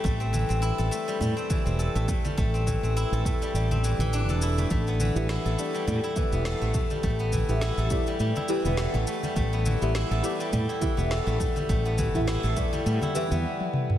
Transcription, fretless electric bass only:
X:1
M:4/4
L:1/16
Q:"Swing 16ths" 1/4=103
K:Ephr
V:1 name="Fretless electric bass" clef=bass
A,,,3 A,,, z A,,, z2 A,, z2 E,,, z A,,, z2 | A,,,3 A,,, z A,,, z2 A,,,3 A,,,2 E,,,3 | A,,,3 A,,, z A,,, z2 A,, z2 E,,, z A,,, z2 | A,,,3 A,,, z A,,, z2 A,, z2 E,,, z A,,, z2 |
A,,,3 A,,, z A,,, z2 A,, z2 E,,, z A,,, z2 | A,,,3 A,,, z A,,, z2 A,, z2 E,, z4 |]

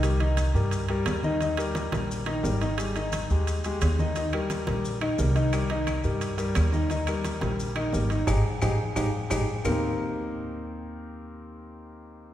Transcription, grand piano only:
X:1
M:4/4
L:1/8
Q:1/4=175
K:Eb
V:1 name="Grand piano"
[G,GB] [E,Ee]2 [G,GB]2 [G,GB]2 [E,Ee] | [E,Ee] [G,GB]2 [G,GB]2 [E,Ee] [G,GB] [E,Ee] | [G,GA] [E,Ee]2 [A,GA]2 [A,GA]2 [E,Ee] | [E,Ee] [G,GB]2 [G,GB]2 [E,Ee] [G,GB] [E,Ee] |
[G,GB] [E,Ee]2 [G,GB]2 [G,GB]2 [E,Ee] | [E,Ee] [G,GB]2 [G,GB]2 [E,Ee] [G,GB] [E,Ee] | [EGA] z [EGA] z [EGA] z [EGA] z | [E,B,CEGB]8- |
[E,B,CEGB]8 |]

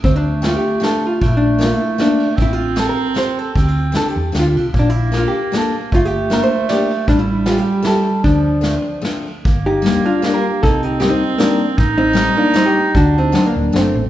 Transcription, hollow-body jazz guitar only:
X:1
M:3/4
L:1/16
Q:"Swing" 1/4=154
K:Dm
V:1 name="Hollow-body jazz guitar"
C D3 F G3 A2 F2 | E D3 F E3 D3 z | E F3 A B3 c2 A2 | G F3 A G3 F3 z |
D E3 F G3 A2 z2 | F G3 B c3 d2 z2 | D E3 F G3 A4 | D8 z4 |
[K:Gm] z2 [EG]4 [DF]2 [DG] [GB]3 | [EA]2 [EG]2 [EG] [CE]3 [B,D]3 z | z2 [CE]4 [B,D]2 [CE] [EG]3 | [D^F]2 [CE]2 [CE] [B,D]3 [A,C]3 z |]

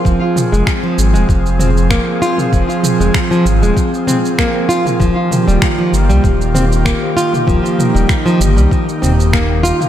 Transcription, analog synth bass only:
X:1
M:4/4
L:1/16
Q:"Swing 16ths" 1/4=97
K:Fm
V:1 name="Analog synth bass" clef=bass
F,,, z2 F,,, z2 A,,, E,,, F,,,4 z4 | F,,, z2 F,,, z2 A,,, E,,, z8 | E,,, z2 E,,, z2 G,,, C,, E,,,4 z4 | E,,, z2 E,,, z2 G,,, C,, z2 E,,,4 z2 |]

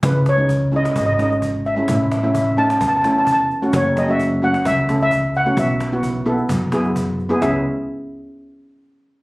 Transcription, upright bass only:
X:1
M:4/4
L:1/8
Q:1/4=130
K:C#m
V:1 name="Upright bass" clef=bass
C,,4 G,,,4 | A,,,4 E,,4 | F,,,4 C,,4 | B,,,4 F,,4 |
C,, z6 z |]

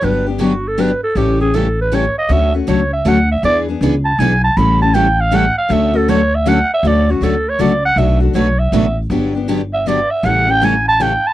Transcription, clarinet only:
X:1
M:3/4
L:1/8
Q:"Swing" 1/4=159
K:D
V:1 name="Clarinet"
B D F A B A | G ^G A B c _e | e A c e f e | d z2 a ^g a |
b a g =f ^f =f | e A c e f e | d F A c d f | e A c e2 z |
z3 e d e | f g ^g a =g a |]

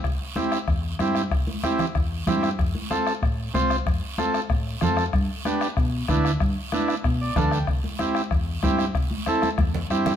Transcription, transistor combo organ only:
X:1
M:4/4
L:1/8
Q:1/4=189
K:C
V:1 name="Transistor combo organ"
z2 [CEG] z3 [CEG] z | z2 [CEG] z3 [CEG] z | z2 [CFA] z3 [CFc] z | z2 [CFA] z3 [CFA] z |
z2 [B,DG] z3 [B,DE] z | z2 [B,DE] z2 d [B,DAf] g | z2 [CEG] z3 [CEG] z | z2 [CEA] z3 [CEG] z |]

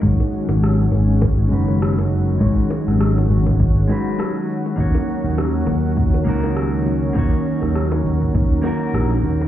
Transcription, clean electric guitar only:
X:1
M:4/4
L:1/8
Q:"Swing 16ths" 1/4=101
K:Abdor
V:1 name="Clean electric guitar"
[A,EGd]4- [A,EGd] [A,EGc]3 | [A,EGd]4- [A,EGd] [A,EGc]3 | [B,EGd]4- [B,EGd] [B,EGB]3 | [B,EGd]4- [B,EGd] [B,EGB]3 |]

